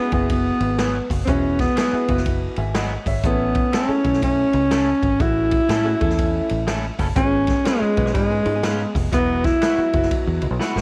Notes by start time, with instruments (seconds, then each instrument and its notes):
Already playing: alto saxophone B3, vibraphone B4
0.12 fingered electric bass F#1, upright piano B3 E4 F#4 G#4, alto saxophone B3, vibraphone B4, kick, ride
0.30 alto saxophone B3, vibraphone B4, kick, ride
0.60 fingered electric bass G#1, ride
0.79 clean electric guitar F#3 B3 E4 G#4, snare, ride
1.10 fingered electric bass F#1, kick, open hi-hat, ride
1.24 fingered electric bass E1, upright piano B3 E4 F#4 G#4, alto saxophone C4, vibraphone C5 C#5, kick, hi-hat pedal, ride
1.28 alto saxophone C#4
1.59 alto saxophone B3, vibraphone B4, kick, snare, ride
1.76 clean electric guitar F#3 B3 E4 G#4, snare, ride
1.91 upright piano B3 E4 F#4 G#4, muted fingered electric bass stroke
2.08 fingered electric bass F#1, upright piano B3 E4 F#4 B4, kick, ride
2.17 snare
2.26 kick, ride
2.56 fingered electric bass G#1, upright piano E5 G#5, ride
2.74 clean electric guitar F#3 B3 E4 G#4, upright piano D#5 F#5, snare, ride
3.06 fingered electric bass G#1, upright piano C#5 E5, kick, open hi-hat, ride
3.23 fingered electric bass A1, upright piano A3 C4 E4 A4, alto saxophone B3, vibraphone B4, kick, hi-hat pedal, ride
3.30 upright piano C#4
3.55 kick, ride
3.72 clean electric guitar A3 C#4 E4 A4, alto saxophone C#4, vibraphone C#5, snare, ride
3.88 upright piano A3 C#4 E4 A4, muted fingered electric bass stroke
4.04 fingered electric bass B1, upright piano A3 C#4 E4 A4, kick, ride
4.13 snare
4.22 alto saxophone C#4, vibraphone C#5, kick, ride
4.53 fingered electric bass C#2, ride
4.71 clean electric guitar A3 C#4 E4 A4, snare, ride
5.03 fingered electric bass G#1, kick, ride
5.19 fingered electric bass A1, upright piano A3 C#4 E4 F#4, alto saxophone E4, vibraphone E5, kick, ride
5.51 kick, ride
5.69 fingered electric bass A2, clean electric guitar A3 C#4 E4 A4, snare, ride
5.84 upright piano A3 C#4 E4 F#4
6.00 fingered electric bass E2, upright piano A3 C#4 E4 A4, kick, ride
6.10 snare
6.18 kick, ride
6.49 fingered electric bass A1, ride
6.67 clean electric guitar A3 C#4 E4 A4, snare, ride
6.99 fingered electric bass F#1, clean electric guitar A3 C#4 E4 A4, kick, open hi-hat, ride
7.15 fingered electric bass G#1, upright piano B3 C#4 F4 G#4, alto saxophone C#4, vibraphone C#5, kick, hi-hat pedal, ride
7.47 kick, snare, ride
7.64 clean electric guitar G#3 C#4 F4 B4, alto saxophone G#3, vibraphone G#4, snare, ride
7.80 upright piano B3 C#4 F4 G#4, muted fingered electric bass stroke
7.96 fingered electric bass B1, upright piano B3 C#4 F4 B4, kick, ride
8.06 hollow-body jazz guitar F4 C#5, snare
8.13 fingered electric bass G#2, alto saxophone G#3, hollow-body jazz guitar D#4 B4, vibraphone G#4, kick, ride
8.31 hollow-body jazz guitar B3 G#4
8.45 fingered electric bass G#2, hollow-body jazz guitar G#3 F4, ride
8.55 hollow-body jazz guitar B3 G#4
8.63 clean electric guitar G#3 C#4 F4 B4, snare, ride
8.95 fingered electric bass F1, kick, open hi-hat, ride
9.12 fingered electric bass E1, upright piano F#3 B3 E4 F#4, alto saxophone B3, vibraphone B4, kick, hi-hat pedal, ride
9.44 alto saxophone E4, vibraphone E5, kick, snare, ride
9.61 clean electric guitar B3 E4 F#4 B4, snare, ride
9.77 upright piano F#3 B3 E4 F#4, muted fingered electric bass stroke
9.93 fingered electric bass F#1, upright piano F#3 B3 E4 F#4, kick, ride
10.02 snare
10.11 kick, ride
10.27 fingered electric bass E2
10.42 fingered electric bass C#2, ride
10.51 fingered electric bass B1
10.59 hollow-body jazz guitar G#3 E4, clean electric guitar B3 E4 F#4 B4, snare
10.76 fingered electric bass G#1, hollow-body jazz guitar A3 F#4, snare